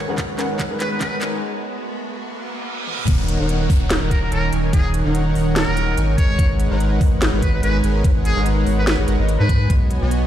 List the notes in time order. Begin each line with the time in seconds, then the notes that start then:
Already playing: G#3 B3 F#4, riser
0.08 G#1 G#3 C#4 D#4 G#4 A#4 B4 C#5 F#5
0.18 kick, clap, closed hi-hat
0.38 G#1 G#3 C#4 D#4 G#4 A#4 B4 C#5 F#5, clap, closed hi-hat
0.59 kick, clap, closed hi-hat
0.70 G#1 G#3 C#4 D#4 G#4 A#4 B4 C#5 F#5
0.80 B4, clap, closed hi-hat
0.91 B4
1.00 G#1 G#3 C#4 D#4 G#4 A#4 B4 C#5 F#5 G#5, kick, clap, closed hi-hat
1.21 G#1 G#3 D#4 A#4 B4 C#5 G#5, clap, closed hi-hat
2.25 reverse cymbal
2.87 high tom
2.98 mid tom
3.08 D#1 D#3 F#3 C#4 D#4 A#4 C#5 F#5, kick, closed hi-hat, crash, downlifter
3.28 closed hi-hat
3.40 D#1 D#3 D#4 A#4 C#5 F#5
3.49 closed hi-hat
3.70 D#1 D#3 D#4 A#4 C#5 F#5, kick, open hi-hat
3.90 snare, closed hi-hat
4.02 D#1 D#3 D#4 A#4 C#5 F#5
4.11 A#4, kick, closed hi-hat
4.22 A#4
4.32 D#1 D#3 D#4 A#4 C#5 G#5, closed hi-hat
4.53 D#1 D#3 D#4 A#4 C#5 G#5, closed hi-hat
4.73 D#1 D#3 D#4 G#4 A#4 C#5 F#5, kick, closed hi-hat
4.94 closed hi-hat
5.05 D#1 D#3 D#4 A#4 C#5 F#5
5.15 closed hi-hat
5.35 D#1 D#3 D#4 A#4 C#5 F#5, open hi-hat
5.56 A#4, snare, closed hi-hat
5.67 D#1 D#3 D#4 A#4 C#5 F#5
5.77 closed hi-hat
5.97 G#1 D#3 D#4 A#4 C#5 G#5, closed hi-hat
6.18 G#1 G#3 B3 D#4 F#4 A#4 B4 C#5 G#5, kick, closed hi-hat
6.39 G#1 G#3 D#4 A#4 B4 C#5 F#5, kick, closed hi-hat
6.60 closed hi-hat
6.71 G#1 G#3 D#4 A#4 B4 C#5 F#5
6.80 closed hi-hat
7.01 G#1 G#3 D#4 A#4 B4 C#5 F#5, kick, open hi-hat
7.22 snare, closed hi-hat
7.33 G#1 G#3 D#4 A#4 B4 C#5 F#5
7.42 B4, kick, closed hi-hat
7.54 B4
7.63 G#1 G#3 D#4 A#4 B4 C#5 G#5, closed hi-hat
7.84 G#1 G#3 D#4 A#4 B4 C#5 G#5, closed hi-hat
8.04 G#1 G#3 D#4 A#4 B4 C#5 F#5, kick, closed hi-hat
8.25 G#4, closed hi-hat
8.36 G#1 G#3 D#4 A#4 B4 C#5 F#5
8.46 closed hi-hat
8.66 G#1 G#3 D#4 A#4 B4 C#5 F#5, open hi-hat
8.78 B4
8.87 B4, snare, closed hi-hat
8.98 G#1 G#3 D#4 A#4 B4 C#5 F#5
9.08 G#1 G#3 D#4 A#4 B4 C#5 F#5, closed hi-hat
9.19 G#1 G#3 D#4 A#4 B4 C#5 D#5
9.29 closed hi-hat
9.40 G#2 G#3 D#4 A#4 B4 C#5 G#5
9.49 kick, closed hi-hat
9.70 B1 G#3 B3 D#4 F#4 C#5 D#5 G#5, kick, closed hi-hat
9.91 closed hi-hat
10.02 B1 B3 F#4 C#5 D#5 G#5
10.11 closed hi-hat